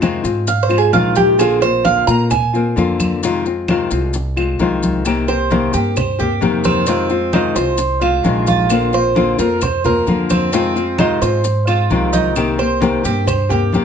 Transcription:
Already playing: F2
0.01 C3 D#3 G#3 C4 F4, high conga, claves, maracas
0.23 G#2 G#3 C4 F4, high conga, maracas
0.47 F5, muted nylon-string guitar stroke, high conga, maracas
0.63 C5
0.69 G#3 C4 F4, high conga, claves, maracas
0.78 G#4
0.92 A#1 C3 D#3 G#3 C4 F4, high conga, maracas
1.15 G4, high conga, maracas
1.38 D3 A#3 C4 F4 G#4, high conga, claves, maracas
1.61 A#3 C4 F4 C5, high conga, maracas
1.84 D3 A#3 C4 F4 F5, high conga, maracas
2.07 A#2 A#3 C4 F4 A#5, high conga, maracas
2.30 G#5, muted nylon-string guitar stroke, high conga, low conga, claves, maracas
2.53 A#3 C4 F4, high conga, maracas
2.76 F2 D3 A#3 C4 F4, high conga, maracas
3.00 high conga, claves, maracas
3.23 C3 D#3 G#3 C4 F4, high conga, maracas
3.46 G#3 C4 F4, high conga, maracas
3.68 C3 D#3 G#3 C4 F4, high conga, claves, maracas
3.91 C2 G#3 C4 F4, high conga, maracas
4.14 muted nylon-string guitar stroke, high conga, maracas
4.37 G#3 C4 F4, high conga, claves, maracas
4.59 C2 C3 D#3 G#3 C4 F4, high conga, maracas
4.83 high conga, maracas
5.05 C3 D#3 A#3 C4 G4, high conga, claves, maracas
5.28 A#3 C4 G4 C5, high conga, maracas
5.50 C3 D#3 A#3 C4 G4, high conga, maracas
5.73 G2 A#3 C4 G4, high conga, maracas
5.96 C5, muted nylon-string guitar stroke, high conga, low conga, claves, maracas
6.19 A#3 C4 G4, high conga, low conga, maracas
6.41 F2 C3 D#3 A#3 C4 G4, high conga, maracas
6.64 C4, high conga, claves, maracas
6.86 C3 D#3 G#3 C4 F4, high conga, maracas
7.10 G#3 C4 F4, high conga, maracas
7.33 C3 D#3 G#3 C4 D#4 F4, high conga, claves, maracas
7.55 C2 G#3 C4 F4 C5, high conga, maracas
7.78 muted nylon-string guitar stroke, high conga, maracas
8.01 G#3 C4 F4, high conga, claves, maracas
8.23 A#1 C3 D#3 G#3 C4 F4, high conga, maracas
8.47 F4, high conga, maracas
8.70 D3 A#3 C4 F4, claves, maracas
8.92 A#3 C4 F4 C5, high conga, maracas
9.15 D3 A#3 C4 F4, high conga, maracas
9.38 F2 A#3 C4 F4 A#4, high conga, maracas
9.61 C5, muted nylon-string guitar stroke, high conga, low conga, claves, maracas
9.84 A#3 C4 F4 A#4, high conga, low conga, maracas
10.07 F2 D3 A#3 C4 F4, high conga, maracas
10.30 C4, high conga, claves, maracas
10.53 C3 D#3 G#3 C4 F4, high conga, maracas
10.76 G#3 C4 F4, high conga, maracas
10.98 C3 D#3 G#3 C4 D#4 F4, high conga, claves, maracas
11.21 G#2 G#3 C4 F4 C5, high conga, maracas
11.44 muted nylon-string guitar stroke, high conga, maracas
11.67 G#3 C4 F4, high conga, claves, maracas
11.90 C2 C3 D#3 G#3 C4 F4, high conga, maracas
12.13 D#4, high conga, maracas
12.36 C3 D#3 A#3 C4 G4, high conga, claves, maracas
12.58 A#3 C4 G4 C5, high conga, maracas
12.80 C3 D#3 A#3 C4 G4, high conga, maracas
13.03 G2 A#3 C4 G4, high conga, maracas
13.27 C5, muted nylon-string guitar stroke, high conga, low conga, claves, maracas
13.49 A#3 C4 G4, high conga, low conga, maracas
13.72 F2 C3 D#3 A#3 C4 G4, high conga, maracas

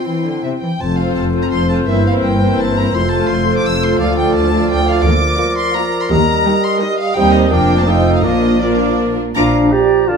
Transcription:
Already playing: C4 G5 C6
0.05 E3 E4
0.25 D3
0.43 C3 E5
0.61 E3 G5
0.79 F1 F2 F3 C4 F4 A4 C5 A5
0.96 C4 F4 A4 C5 F5
1.15 F1 F2 A5
1.34 C4 F4 A4 C5
1.43 A#5
1.51 F1 F2 C6
1.69 C4 F4 A4 C5 A5
1.87 G1 G2 E3 A#3 C4 E4 A#4 C5 E5
2.06 C4 E4 A#4 C5 F5
2.23 G1 G2 G5
2.42 C4 E4 A#4 C5
2.58 G1 G2 A5
2.76 C4 E4 A#4 C5 A#5
2.93 F1 F2 F3 A3 F4 A4 C5 C6
3.12 A3 F4 A4 C5 A5
3.29 F1 F2 C6
3.47 A3 F4 A4 C5
3.57 D6
3.64 F1 F2 E6
3.82 A3 F4 A4 C5 C6
3.99 D2 A3 F4 A4 D5 F5
4.17 A3 F4 A4 D5 G5
4.34 D2 A5
4.52 A3 F4 A4 D5
4.70 D2 G5
4.86 A3 F4 A4 D5 F5
5.04 D2 F3 A#3 F4 A#4 D6
5.39 A#3 F4 A#4
5.57 C6
5.75 A#3 F4 A#4 A#5
6.02 C6
6.10 D#2 G3 A#3 G4 D#5 A#5
6.45 G3 D#4 G4 A#4
6.64 C6
6.80 G3 D#4 G4 A#4 D#5
6.99 F5
7.15 D#2 G3 C4 D#4 G4 C5 D#5 G5
7.33 D#5
7.51 F1 F2 F3 A#3 D4 F4 A#4 D5 G5
7.79 A5
7.86 F3 A3 D#4 F4 A4 C5 D#5 G5
8.15 F5
8.23 A#1 A#2 F3 A#3 D4 F4 A#4 D5 D#5
8.61 F3 A#3 D4 F4 A#4 D5
9.35 A#1 A#2 F3 D4 F4 F5 A#5 D6
9.72 G4 D5 A#5
10.07 D3 F4 D5 A5

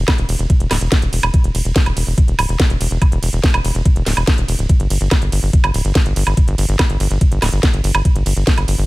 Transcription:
0.08 kick, snare, closed hi-hat, high woodblock
0.18 E1, closed hi-hat
0.29 E1, open hi-hat, ride
0.39 E1, closed hi-hat
0.50 kick, closed hi-hat
0.60 E1, closed hi-hat
0.71 D1, snare, open hi-hat, ride, high woodblock
0.81 E1, closed hi-hat
0.92 kick, snare, closed hi-hat
1.02 E1, closed hi-hat
1.13 E1, open hi-hat, ride
1.23 E1, closed hi-hat, high woodblock
1.34 kick, closed hi-hat
1.44 E1, closed hi-hat
1.55 E1, open hi-hat, ride
1.65 E1, closed hi-hat
1.76 kick, snare, closed hi-hat
1.86 E1, closed hi-hat, high woodblock
1.97 E1, open hi-hat, ride
2.07 E1, open hi-hat
2.18 kick, closed hi-hat
2.28 E1, closed hi-hat
2.39 D1, open hi-hat, ride, high woodblock
2.49 E1, closed hi-hat
2.60 kick, snare, closed hi-hat
2.70 E1, closed hi-hat
2.81 E1, open hi-hat, ride
2.91 E1, closed hi-hat
3.02 kick, closed hi-hat, high woodblock
3.12 E1, closed hi-hat
3.23 E1, open hi-hat, ride
3.33 E1, closed hi-hat
3.44 kick, snare, closed hi-hat
3.54 E1, closed hi-hat, high woodblock
3.64 E1, open hi-hat, ride
3.75 E1, closed hi-hat
3.85 kick, closed hi-hat
3.96 E1, closed hi-hat
4.06 D1, snare, open hi-hat, ride
4.17 E1, closed hi-hat, high woodblock
4.27 kick, snare, closed hi-hat
4.38 E1, closed hi-hat
4.48 E1, open hi-hat, ride
4.59 D1, closed hi-hat
4.69 kick, closed hi-hat
4.80 G1, closed hi-hat
4.90 G1, open hi-hat, ride
5.01 G1, closed hi-hat
5.11 kick, snare, closed hi-hat, high woodblock
5.22 G1, closed hi-hat
5.32 G1, open hi-hat, ride
5.43 G1, open hi-hat
5.53 kick, closed hi-hat
5.64 G1, closed hi-hat, high woodblock
5.74 D1, open hi-hat, ride
5.85 G1, closed hi-hat
5.95 kick, snare, closed hi-hat
6.06 G1, closed hi-hat
6.16 G1, open hi-hat, ride
6.27 G1, closed hi-hat, high woodblock
6.37 kick, closed hi-hat
6.48 G1, closed hi-hat
6.58 G1, open hi-hat, ride
6.69 G1, closed hi-hat
6.79 kick, snare, closed hi-hat, high woodblock
6.90 G1, closed hi-hat
7.00 G1, open hi-hat, ride
7.11 G1, closed hi-hat
7.21 kick, closed hi-hat
7.32 G1, closed hi-hat
7.42 D1, snare, open hi-hat, ride, high woodblock
7.53 G1, closed hi-hat
7.63 kick, snare, closed hi-hat
7.74 G1, closed hi-hat
7.84 G1, open hi-hat, ride
7.95 G1, closed hi-hat, high woodblock
8.05 kick, closed hi-hat
8.15 G1, closed hi-hat
8.26 G1, open hi-hat, ride
8.36 G1, closed hi-hat
8.47 kick, snare, closed hi-hat
8.57 G1, closed hi-hat, high woodblock
8.68 G1, open hi-hat, ride
8.78 G1, open hi-hat

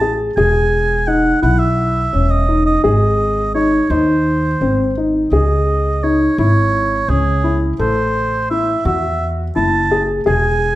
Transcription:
Already playing: A1 A5
0.01 G#4
0.37 E1 G#4 G#5
1.07 D#4 F#5
1.42 B1 E4 F#5
1.59 E5
2.13 E1 C#4
2.31 D#5
2.49 D#4
2.66 D#5
2.84 G#1 G#4 D#5
3.55 D#4 C#5
3.90 D#2 D#4 C5
4.61 G#1 C4
4.97 D#4
5.31 C#2 G#4 D#5
6.03 D#4 C#5
6.38 G#1 E4 C#5
7.08 C#2 C#4 G#4
7.44 E4
7.79 A1 A4 C5
8.50 E4 E5
8.85 E2 F#4 E5
9.56 F#1 E4 A5
9.91 G#4
10.26 E1 G#4 G#5

